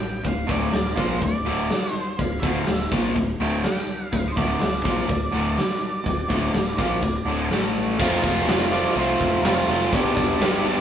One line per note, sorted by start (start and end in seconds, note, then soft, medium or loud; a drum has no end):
0.00 0.21 A1 medium
0.00 0.28 G5 loud
0.23 0.47 D1 medium
0.23 0.43 D2 medium
0.23 0.44 A2 medium
0.23 kick medium
0.23 closed hi-hat medium
0.28 0.51 F5 medium
0.47 0.72 D1 medium
0.47 0.71 D2 medium
0.47 0.72 A2 medium
0.47 0.72 D3 medium
0.47 0.99 D5 medium
0.47 kick medium
0.72 0.96 D1 medium
0.72 0.92 D2 medium
0.72 0.93 A2 medium
0.72 snare loud
0.72 closed hi-hat medium
0.96 1.20 A#2 medium
0.96 1.21 F3 medium
0.96 1.20 A#3 medium
0.96 1.21 C5 medium
0.96 kick loud
1.20 1.44 D1 medium
1.20 1.40 D2 medium
1.20 1.41 A2 medium
1.20 1.94 D5 medium
1.20 kick medium
1.20 closed hi-hat medium
1.45 1.69 D1 medium
1.45 1.69 D2 medium
1.45 1.69 A2 medium
1.45 1.69 D3 medium
1.70 snare loud
1.70 closed hi-hat medium
1.94 2.23 C5 medium
2.19 2.42 D1 medium
2.19 2.38 D2 medium
2.19 2.38 A2 medium
2.19 2.39 F5 medium
2.19 kick medium
2.19 closed hi-hat medium
2.40 2.65 D1 medium
2.40 2.66 D2 medium
2.40 2.66 A2 medium
2.40 2.67 D3 loud
2.40 2.75 F5 medium
2.40 kick medium
2.67 2.90 D1 medium
2.67 2.87 D2 medium
2.67 2.87 A2 medium
2.67 snare loud
2.67 closed hi-hat medium
2.75 2.87 E5 medium
2.92 3.14 A#1 medium
2.92 3.15 A#2 medium
2.92 3.15 F3 medium
2.92 3.16 A#3 medium
2.92 kick loud
3.05 snare soft
3.15 3.38 D1 medium
3.15 3.35 D2 medium
3.15 3.35 A2 medium
3.15 kick medium
3.15 closed hi-hat medium
3.40 3.62 D1 medium
3.40 3.64 D2 medium
3.40 3.64 A2 medium
3.40 3.65 D3 medium
3.40 3.65 G5 medium
3.64 4.13 G5 loud
3.64 snare loud
3.64 closed hi-hat medium
4.13 4.35 D1 medium
4.13 4.33 D2 medium
4.13 4.32 A2 medium
4.13 4.31 F5 loud
4.13 kick medium
4.13 closed hi-hat medium
4.28 4.36 C5 medium
4.36 4.59 D1 medium
4.36 4.59 D2 medium
4.36 4.59 A2 medium
4.36 4.61 D3 medium
4.36 7.47 D5 medium
4.36 kick medium
4.60 4.83 D1 medium
4.60 4.80 D2 medium
4.60 4.80 A2 medium
4.60 snare loud
4.60 closed hi-hat medium
4.84 5.08 A#1 medium
4.84 5.07 A#2 medium
4.84 5.07 F3 medium
4.84 5.09 A#3 medium
4.84 kick loud
5.07 5.32 D1 medium
5.07 5.28 D2 medium
5.07 5.28 A2 medium
5.07 kick medium
5.07 closed hi-hat medium
5.32 5.56 D1 medium
5.32 5.56 D2 medium
5.32 5.56 A2 medium
5.32 5.57 D3 medium
5.58 snare loud
5.58 closed hi-hat medium
6.04 6.28 D1 medium
6.04 6.24 D2 medium
6.04 6.25 A2 medium
6.04 kick medium
6.04 closed hi-hat medium
6.28 6.53 D1 medium
6.28 6.52 D2 medium
6.28 6.53 A2 medium
6.28 6.53 D3 medium
6.28 kick medium
6.53 6.77 D1 medium
6.53 6.73 D2 medium
6.53 6.74 A2 medium
6.53 snare loud
6.53 closed hi-hat medium
6.77 7.01 A#1 medium
6.77 7.01 A#2 medium
6.77 7.02 F3 medium
6.77 7.02 A#3 medium
6.77 kick loud
7.02 7.24 D1 medium
7.02 7.22 D2 medium
7.02 7.22 A2 medium
7.02 kick medium
7.02 closed hi-hat medium
7.25 7.48 D1 medium
7.25 7.50 D2 medium
7.25 7.50 A2 medium
7.25 7.50 D3 medium
7.51 7.96 A1 medium
7.51 7.99 A2 medium
7.51 7.99 E3 medium
7.51 7.99 A3 loud
7.51 snare loud
7.51 closed hi-hat medium
7.98 8.17 F1 medium
7.98 8.47 F2 loud
7.98 8.48 C3 loud
7.98 8.25 F3 loud
7.98 8.24 A3 loud
7.98 8.23 C4 loud
7.98 8.22 F4 loud
7.98 8.21 F5 loud
7.98 kick loud
7.98 crash loud
8.23 8.41 F1 medium
8.23 8.46 F3 medium
8.23 8.47 A3 medium
8.23 8.48 C4 medium
8.23 8.48 F4 medium
8.23 8.68 F5 medium
8.23 kick medium
8.23 open hi-hat medium
8.47 8.82 F1 medium
8.47 8.95 F2 medium
8.47 8.96 C3 loud
8.47 8.72 F3 medium
8.47 8.72 A3 medium
8.47 8.70 C4 medium
8.47 8.70 F4 medium
8.47 snare loud
8.47 open hi-hat medium
8.71 8.96 F3 medium
8.71 8.97 A3 medium
8.71 8.97 C4 medium
8.71 8.97 F4 medium
8.71 8.96 D5 medium
8.71 open hi-hat medium
8.85 snare soft
8.95 9.13 C2 medium
8.95 9.68 F2 medium
8.95 9.68 C3 medium
8.95 9.42 F3 loud
8.95 9.43 A3 loud
8.95 9.44 C4 loud
8.95 9.45 F4 medium
8.95 9.41 C5 medium
8.95 open hi-hat medium
9.20 9.38 F1 medium
9.20 kick medium
9.20 open hi-hat medium
9.42 9.61 F1 medium
9.42 9.70 F3 medium
9.42 9.69 A3 medium
9.42 9.68 C4 medium
9.42 9.67 F4 medium
9.42 9.90 C5 medium
9.42 snare loud
9.42 open hi-hat medium
9.68 9.85 F1 medium
9.68 9.92 F3 medium
9.68 9.92 A3 medium
9.68 9.91 C4 medium
9.68 9.91 F4 medium
9.68 open hi-hat medium
9.90 10.10 G1 loud
9.90 10.40 G2 loud
9.90 10.41 D3 medium
9.90 10.18 G3 loud
9.90 10.16 B3 loud
9.90 10.17 D4 loud
9.90 10.81 D5 medium
9.90 kick loud
9.90 open hi-hat medium
9.95 10.15 G4 loud
10.16 10.34 F1 medium
10.16 10.38 G3 medium
10.16 10.40 B3 medium
10.16 10.41 D4 medium
10.16 10.41 G4 medium
10.16 kick medium
10.16 open hi-hat medium
10.39 10.75 G1 medium
10.39 10.81 G2 loud
10.39 10.81 D3 loud
10.39 10.67 G3 medium
10.39 10.66 B3 medium
10.39 10.65 D4 medium
10.39 10.64 G4 medium
10.39 snare loud
10.39 open hi-hat medium
10.65 10.81 G3 medium
10.65 10.81 B3 medium
10.65 10.81 D4 medium
10.65 10.81 G4 medium
10.65 open hi-hat medium